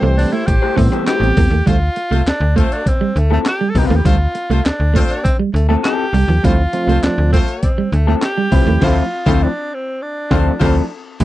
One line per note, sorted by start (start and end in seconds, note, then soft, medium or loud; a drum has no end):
0.00 0.25 C2 loud
0.00 0.27 E3 loud
0.00 0.27 G3 medium
0.00 0.27 A3 loud
0.00 1.33 A3 medium
0.00 0.13 A3 medium
0.00 0.28 C4 loud
0.00 1.33 G4 medium
0.00 1.33 C5 loud
0.18 0.34 D4 medium
0.18 muted clean electric guitar stroke soft
0.18 open hi-hat medium
0.33 0.43 A3 medium
0.33 0.48 E4 medium
0.46 0.59 A1 medium
0.46 0.79 G4 medium
0.46 muted clean electric guitar stroke soft
0.46 kick loud
0.46 closed hi-hat medium
0.62 0.76 A3 medium
0.62 0.76 E4 medium
0.62 0.76 G4 medium
0.62 0.76 C5 medium
0.76 0.89 A2 loud
0.76 1.03 E3 medium
0.76 1.03 G3 medium
0.76 1.03 B3 medium
0.76 0.87 C4 medium
0.76 1.06 C4 medium
0.76 1.03 C4 medium
0.76 kick loud
0.76 open hi-hat medium
0.92 1.03 A3 soft
0.92 1.02 C4 medium
0.92 1.03 E4 medium
0.92 1.03 G4 medium
0.92 1.03 C5 medium
0.92 closed hi-hat soft
1.07 1.27 A3 medium
1.07 1.27 E4 medium
1.07 1.69 G4 loud
1.07 1.27 G4 medium
1.07 1.28 C5 medium
1.07 muted clean electric guitar stroke soft
1.07 snare loud
1.07 clap medium
1.07 closed hi-hat loud
1.20 1.32 A1 medium
1.20 1.48 E3 medium
1.20 1.48 G3 medium
1.20 1.48 B3 medium
1.20 1.48 C4 medium
1.20 closed hi-hat soft
1.37 1.48 E2 loud
1.37 1.47 A3 medium
1.37 kick loud
1.37 open hi-hat medium
1.50 1.62 D#2 medium
1.50 1.61 A3 medium
1.66 1.90 D2 loud
1.66 1.76 G3 medium
1.66 1.77 A3 medium
1.66 1.76 F4 medium
1.66 2.27 F4 loud
1.66 1.76 C5 loud
1.66 kick loud
1.66 closed hi-hat medium
1.96 muted clean electric guitar stroke soft
1.96 closed hi-hat medium
2.11 2.23 C2 medium
2.11 2.21 A3 medium
2.11 2.21 F4 medium
2.11 2.22 C5 medium
2.11 closed hi-hat medium
2.26 2.32 D2 medium
2.26 2.58 D4 loud
2.26 snare loud
2.26 clap medium
2.26 closed hi-hat medium
2.40 2.63 D2 loud
2.56 2.66 A3 medium
2.56 2.95 A3 loud
2.56 2.74 C4 medium
2.56 2.95 F4 medium
2.56 2.94 C5 loud
2.56 kick medium
2.56 closed hi-hat medium
2.72 2.89 D4 loud
2.72 closed hi-hat medium
2.86 3.20 C4 medium
2.86 kick loud
2.86 closed hi-hat medium
3.01 3.11 G3 medium
3.16 3.38 D2 medium
3.16 3.32 A3 medium
3.16 muted clean electric guitar stroke soft
3.16 closed hi-hat medium
3.31 3.45 F3 medium
3.31 3.41 A3 medium
3.31 3.39 A3 medium
3.31 3.44 C4 medium
3.31 3.44 E4 medium
3.31 3.44 A4 medium
3.46 3.71 G4 loud
3.46 snare loud
3.46 clap medium
3.46 closed hi-hat medium
3.61 3.71 G3 medium
3.70 3.80 A4 medium
3.75 3.86 C2 medium
3.75 3.96 F3 medium
3.75 3.96 C4 medium
3.75 3.96 E4 medium
3.75 3.88 G4 medium
3.75 3.96 B4 medium
3.75 muted clean electric guitar stroke soft
3.75 kick loud
3.75 open hi-hat medium
3.87 4.02 D#2 loud
3.87 4.00 A3 medium
3.87 3.98 F4 medium
3.96 4.05 G4 medium
4.05 4.28 D2 medium
4.05 4.15 G3 medium
4.05 4.15 A3 medium
4.05 4.66 F4 medium
4.05 4.15 F4 medium
4.05 4.15 C5 medium
4.05 kick loud
4.05 closed hi-hat medium
4.35 muted clean electric guitar stroke soft
4.35 closed hi-hat medium
4.50 4.61 C2 medium
4.50 4.60 A3 medium
4.50 4.60 F4 medium
4.50 4.60 C5 medium
4.50 closed hi-hat medium
4.65 4.71 D2 soft
4.65 4.95 D4 loud
4.65 snare loud
4.65 clap medium
4.65 closed hi-hat medium
4.80 5.02 D2 medium
4.94 5.04 A3 medium
4.94 5.33 A3 medium
4.94 5.00 C4 medium
4.94 5.33 F4 loud
4.94 5.33 C5 loud
4.94 kick medium
4.94 closed hi-hat medium
4.99 5.11 C4 medium
4.99 5.04 D4 medium
5.10 5.23 D4 loud
5.10 closed hi-hat medium
5.24 5.37 C4 medium
5.24 kick loud
5.24 closed hi-hat medium
5.39 5.49 G3 medium
5.54 5.77 D2 medium
5.54 5.68 A3 medium
5.54 muted clean electric guitar stroke soft
5.54 closed hi-hat medium
5.69 5.82 F3 medium
5.69 5.76 A3 medium
5.69 5.80 A3 medium
5.69 5.82 C4 medium
5.69 5.82 E4 medium
5.69 5.82 A4 medium
5.83 6.04 F3 medium
5.83 6.04 C4 medium
5.83 6.05 E4 medium
5.83 6.46 G4 loud
5.83 6.05 A4 loud
5.83 muted clean electric guitar stroke soft
5.83 snare loud
5.83 clap medium
5.83 closed hi-hat medium
6.13 6.25 C2 medium
6.13 6.24 G3 medium
6.13 open hi-hat medium
6.28 6.40 D#2 medium
6.28 6.39 F3 medium
6.43 6.67 D2 medium
6.43 6.60 F3 medium
6.43 6.54 G3 medium
6.43 6.61 A3 medium
6.43 6.54 A3 medium
6.43 6.61 C4 medium
6.43 6.61 E4 medium
6.43 7.05 F4 loud
6.43 6.54 F4 medium
6.43 6.54 C5 medium
6.43 kick loud
6.43 closed hi-hat medium
6.73 7.42 F3 medium
6.73 7.42 A3 medium
6.73 7.42 C4 medium
6.73 7.42 F4 medium
6.73 muted clean electric guitar stroke soft
6.73 closed hi-hat medium
6.87 6.99 C2 medium
6.87 6.99 A3 medium
6.87 6.98 A3 medium
6.87 6.98 F4 medium
6.87 6.98 C5 medium
6.87 closed hi-hat medium
7.03 7.09 D2 medium
7.03 7.32 D4 loud
7.03 snare loud
7.03 clap medium
7.03 closed hi-hat medium
7.18 7.41 D2 medium
7.32 7.43 A3 medium
7.32 7.72 A3 loud
7.32 7.39 C4 medium
7.32 7.72 F4 medium
7.32 7.72 C5 loud
7.32 kick medium
7.32 closed hi-hat medium
7.48 closed hi-hat medium
7.63 7.91 C4 medium
7.63 kick loud
7.63 closed hi-hat medium
7.78 7.88 G3 medium
7.92 8.15 D2 loud
7.92 8.07 A3 medium
7.92 muted clean electric guitar stroke soft
7.92 closed hi-hat medium
8.07 8.21 F3 medium
8.07 8.18 A3 medium
8.07 8.15 A3 medium
8.07 8.21 C4 medium
8.07 8.21 E4 medium
8.07 8.21 A4 medium
8.22 8.86 G4 loud
8.22 snare loud
8.22 clap medium
8.22 closed hi-hat medium
8.38 8.47 G3 medium
8.51 8.64 C2 medium
8.51 8.81 F3 medium
8.51 8.65 F3 medium
8.51 8.81 A3 medium
8.51 8.81 C4 medium
8.51 8.65 C4 medium
8.51 8.81 E4 loud
8.51 8.66 E4 medium
8.51 8.66 B4 medium
8.51 kick loud
8.51 open hi-hat medium
8.66 8.78 D#2 medium
8.66 8.77 A3 medium
8.81 9.02 D2 medium
8.81 9.02 F3 loud
8.81 9.02 A3 loud
8.81 8.98 A3 loud
8.81 9.02 C4 loud
8.81 9.02 E4 medium
8.81 9.02 E4 loud
8.81 8.98 F4 medium
8.81 9.44 F4 loud
8.81 8.98 C5 loud
8.81 kick loud
8.81 snare loud
8.81 crash medium
9.26 9.47 D2 loud
9.26 9.47 F3 loud
9.26 9.47 F3 medium
9.26 9.42 A3 loud
9.26 9.47 A3 loud
9.26 9.47 C4 loud
9.26 9.47 E4 loud
9.26 9.42 F4 loud
9.26 9.42 C5 loud
9.26 kick loud
9.26 snare medium
9.43 9.76 D4 medium
9.74 10.04 C4 medium
10.02 10.91 D4 medium
10.31 10.51 D2 loud
10.31 10.51 F3 loud
10.31 10.51 F3 medium
10.31 10.51 A3 medium
10.31 10.46 A3 medium
10.31 10.51 C4 loud
10.31 10.52 E4 loud
10.31 10.46 F4 medium
10.31 10.52 F4 loud
10.31 10.52 A4 medium
10.31 10.46 C5 medium
10.31 kick loud
10.31 snare loud
10.60 10.81 D2 loud
10.60 10.81 F3 medium
10.60 10.82 F3 loud
10.60 10.76 A3 loud
10.60 10.81 A3 medium
10.60 10.81 C4 loud
10.60 10.82 C4 loud
10.60 10.82 E4 loud
10.60 10.76 F4 loud
10.60 10.82 A4 medium
10.60 10.75 C5 loud
10.60 kick loud
10.60 snare loud
10.60 crash medium
11.20 11.24 D2 loud
11.20 11.24 F3 medium
11.20 11.24 G3 medium
11.20 11.24 A3 medium
11.20 11.24 C4 medium
11.20 11.24 E4 loud
11.20 kick loud
11.20 closed hi-hat loud